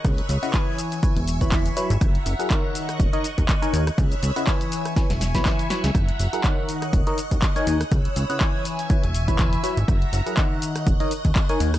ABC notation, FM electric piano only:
X:1
M:4/4
L:1/16
Q:"Swing 16ths" 1/4=122
K:F#mix
V:1 name="FM electric piano"
z3 [C,EBdf] [E,EBcg]4 [E,EBcg] z2 [E,EBcb]3 [F,EBcb] z | z3 [F,EGAf] [D,DAc]4- [D,DAc] [D,DAcd] z3 [D,DAcg]2 z | z3 [C,EBdf] [E,EBcg]4 [E,EBcg] z2 [E,EBcb]3 [F,EBcb] z | z3 [F,EGAf] [D,DAcf]4- [D,DAcf] [D,DAcd] z3 [D,DAcg]2 z |
z3 [C,EBdf] [E,EBcg]4 [E,EBcg] z2 [E,EBcb]3 [F,EBcb] z | z3 [F,EGAf] [D,Dcf]4- [D,Dcf] [D,DAcd] z3 [D,DAcg]2 z |]